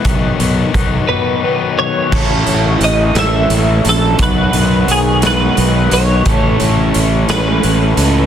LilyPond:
<<
  \new Staff \with { instrumentName = "Clean electric guitar" } { \time 6/8 \key a \lydian \tempo 4. = 58 r4. b'4 cis''8~ | cis''4 dis''8 e''4 a'8 | b'4 gis'8 b'4 cis''8~ | cis''4. b'4. | }
  \new Staff \with { instrumentName = "Overdriven electric guitar" } { \time 6/8 \key a \lydian r2. | <a, e a cis' a'>2~ <a, e a cis' a'>8 <a, e a cis' a'>8 | <b, fis b dis' fis'>2~ <b, fis b dis' fis'>8 <b, fis b dis' fis'>8 | <a, e a cis' a'>2~ <a, e a cis' a'>8 <a, e a cis' a'>8 | }
  \new Staff \with { instrumentName = "Overdriven electric guitar" } { \clef bass \time 6/8 \key a \lydian <b, dis fis b dis'>8 <b, dis fis b dis'>8 <b, dis fis b dis'>8 <b, dis fis b dis'>8 <b, dis fis b dis'>4 | <a, e a cis' e' a'>4. <a, e a cis' e' a'>4. | <b, dis fis b fis'>4. <b, dis fis b fis'>4. | <a, e a cis' e'>4. <a, e a cis' e'>4. | }
  \new Staff \with { instrumentName = "Fingered electric bass" } { \clef bass \time 6/8 \key a \lydian b,,8 b,,8 b,,8 r4. | a,,8 a,,8 a,,8 a,,8 a,,8 ais,,8 | b,,8 b,,8 b,,4 b,,8 b,,8 | a,,8 a,,8 a,,8 a,,8 a,,8 cis,8 | }
  \new DrumStaff \with { instrumentName = "Drums" } \drummode { \time 6/8 <hh bd>8 hh8 <hh bd>8 r4. | <cymc bd>8 hh8 hh8 <hh sn>8 hh8 hh8 | <hh bd>8 hh8 hh8 <hh sn>8 hh8 hh8 | <hh bd>8 hh8 hh8 <hh sn>8 hh8 hh8 | }
>>